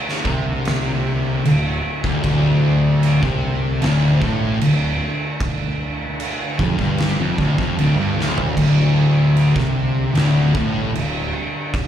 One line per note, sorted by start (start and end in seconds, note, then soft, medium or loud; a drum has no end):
0.00 11.88 D3 medium
0.00 8.53 A3 medium
0.00 11.88 D4 medium
0.09 snare soft
0.25 1.41 C2 medium
0.25 1.43 C3 loud
0.25 kick loud
0.65 snare loud
0.65 crash medium
1.45 1.81 D1 medium
1.45 1.77 D2 medium
1.45 crash medium
2.04 2.22 D1 medium
2.04 2.23 D2 loud
2.04 kick loud
2.24 3.19 D1 loud
2.24 3.21 D2 loud
2.24 kick loud
2.24 crash medium
3.03 crash medium
3.22 3.78 C2 medium
3.22 3.80 C3 loud
3.22 kick loud
3.81 4.20 D1 loud
3.81 4.20 D2 loud
3.81 snare loud
3.81 crash medium
4.21 4.59 A1 medium
4.21 4.60 A2 loud
4.21 kick loud
4.60 4.98 D1 medium
4.60 4.93 D2 medium
4.60 crash medium
5.40 kick loud
5.40 crash medium
6.20 crash medium
6.59 6.78 F1 loud
6.59 6.78 F2 loud
6.59 kick loud
6.79 7.16 G1 medium
6.79 7.18 G2 loud
6.79 kick loud
6.98 snare loud
6.98 crash medium
7.18 7.37 F1 loud
7.18 7.37 F2 loud
7.38 7.57 D1 medium
7.38 7.57 D2 medium
7.38 kick loud
7.58 7.77 F1 loud
7.58 7.77 F2 loud
7.58 kick loud
7.78 7.97 D1 medium
7.78 7.96 D2 loud
7.78 crash medium
7.97 8.16 G1 loud
7.97 8.16 G2 loud
8.17 8.54 D1 loud
8.17 8.55 D2 loud
8.17 snare medium
8.38 floor tom medium
8.56 9.52 D1 loud
8.56 9.54 D2 loud
8.56 11.88 G3 medium
8.56 kick loud
8.56 crash loud
9.36 crash medium
9.55 10.12 C2 medium
9.55 10.14 C3 loud
9.55 kick loud
9.55 snare soft
10.14 10.53 D1 medium
10.14 10.53 D2 loud
10.14 snare loud
10.14 crash medium
10.54 10.92 A1 medium
10.54 10.92 A2 loud
10.54 kick loud
10.92 11.31 D1 medium
10.92 11.25 D2 medium
10.92 crash medium
11.74 kick loud
11.74 crash medium